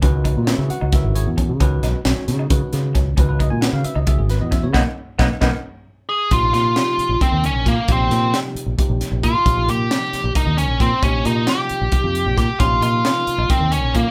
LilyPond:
<<
  \new Staff \with { instrumentName = "Lead electric guitar" } { \time 7/8 \key cis \dorian \tempo 4 = 134 r2. r8 | r2. r8 | r2. r8 | r2. gis'8 |
\key f \minor f'8 f'4. c'8 des'8 bes8 | c'4 r2 f'8~ | f'8 g'4. ees'8 des'8 c'8 | des'8 ees'8 g'2 g'8 |
f'8 f'4. c'8 des'8 bes8 | }
  \new Staff \with { instrumentName = "Tine electric piano" } { \time 7/8 \key cis \dorian r4 <e' cis'' dis'' e''>8 <fis' fis''>8 <e' b' cis'' e''>8 <cis' e' gis' cis''>8 r8 | r2. r8 | r16 b'16 dis''16 gis''16 fis''16 eis''16 e''16 dis''16 e''16 gis'16 b'16 dis''16 e''16 cis''16 | <ais b dis' b' dis'' fis''>8 r8 <ais b dis' b' dis'' fis''>8 <ais b dis' b' dis'' fis''>8 r4. |
\key f \minor r2. r8 | r2. r8 | r2. r8 | r2. r8 |
r2. r8 | }
  \new Staff \with { instrumentName = "Tine electric piano" } { \time 7/8 \key cis \dorian <dis gis cis' fis' b'>4 <dis gis cis' fis' b'>4 <dis gis cis' fis' ais'>4. | <dis gis cis' fis' b'>4 <dis gis cis' fis' cis''>4 <dis gis cis' fis' b'>4. | <dis gis cis' fis' b'>4 <dis gis cis' fis' b'>4 <dis gis cis' fis' gis'>4. | r2. r8 |
\key f \minor <c f bes ees' g'>4 <c f bes ees' g'>4 <c f bes ees' bes'>4. | <c f bes ees' g'>4 <c f bes ees' g'>4 <c f bes ees' g'>4. | <c f bes ees' g'>4 <c f bes ees' g'>4 <c f bes ees' bes'>4. | <c f bes ees' g'>4 <c f bes ees' f'>4 <c f bes ees' g'>4. |
<c f bes ees' g'>4 <c f bes ees' bes'>4 <c f bes ees' bes'>4. | }
  \new Staff \with { instrumentName = "Clean electric guitar" } { \time 7/8 \key cis \dorian cis'8 dis'8 cis'8 r16 dis'8 r8. cis'8 | cis'8 dis'8 cis'8 r16 dis'8 r8. cis'8 | cis'8 dis'8 cis'8 r16 dis'8 r8. cis'8 | <ais b dis'>8 r8 <ais b dis'>8 <ais b dis'>8 r4. |
\key f \minor r2. r8 | r2. r8 | r2. r8 | r2. r8 |
des'8 ees'8 des'8 r16 ees'8 r8. des'8 | }
  \new Staff \with { instrumentName = "Fretless electric bass" } { \clef bass \time 7/8 \key cis \dorian cis,8. ais,8 cis16 r16 cis,8 gis,,8 e,8 cis16 | cis,8 b,,16 r16 b,,16 r16 cis8 cis16 r16 cis8 cis,8 | cis,8. ais,8 cis16 r16 cis,8 gis,,8 e,8 cis16 | b,,16 r8. b,,16 r16 b,,16 r4. r16 |
\key f \minor bes,,8 bes,8 r8. bes,,16 r16 ees,8 bes,,16 bes,16 r16 | bes,,8 bes,8 r8. bes,,16 r16 bes,,16 r16 bes,,16 bes,16 r16 | bes,,8 bes,8 r8. bes,,16 r16 ees,8 bes,,16 bes,16 r16 | bes,,8 bes,8 r8. bes,,16 r16 f,8 bes,,16 bes,16 r16 |
bes,,8 bes,8 r8. bes,,16 r16 ees,8 bes,,16 bes,16 r16 | }
  \new DrumStaff \with { instrumentName = "Drums" } \drummode { \time 7/8 <hh bd>8 <hh bd>8 <hh sn>8 hh8 <hh bd sn>8 hh8 <hh bd>8 | <hh bd>8 <hh sn>8 <hh sn>8 <hh sn>8 <hh bd>8 <hh sn>8 <hh bd sn>8 | <hh bd>8 <hh bd>8 <hh sn>8 hh8 <hh bd>8 <hh sn>8 <hh bd sn>8 | <bd sn>4 <bd sn>8 <bd sn>8 r4. |
<hh bd>8 <hh sn>8 <hh sn>8 hh8 <hh bd>8 hh8 <hh bd sn>8 | <hh bd>8 <hh sn>8 <hh sn>8 hh8 <hh bd>8 <hh sn>8 <hh bd>8 | <hh bd>8 hh8 <hh sn>8 <hh sn>8 <hh bd>8 hh8 <hh bd sn>8 | <hh bd>8 hh8 <hh sn>8 hh8 <hh bd>8 hh8 <hh bd sn>8 |
<hh bd>8 hh8 <hh sn>8 hh8 <hh bd>8 hh8 <hh bd>8 | }
>>